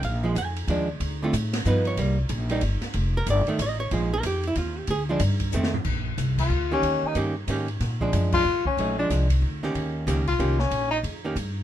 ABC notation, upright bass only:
X:1
M:3/4
L:1/8
Q:"Swing" 1/4=186
K:Eb
V:1 name="Upright bass" clef=bass
B,,,2 F,,2 E,,2 | D,,2 =A,,2 G,,2 | C,,2 B,,,2 G,,, z | F,,,2 G,,, z =A,,,2 |
B,,,2 F,,2 E,,2 | D,,2 G,,2 F,,2 | B,,,2 C,,2 D,,2 | E,, z G,,2 A,,2 |
B,,2 _G,,2 F,, z | B,,,2 C,,2 D,,2 | E,,2 _D,,2 C,,2 | B,,,2 F,,2 G,,2 |]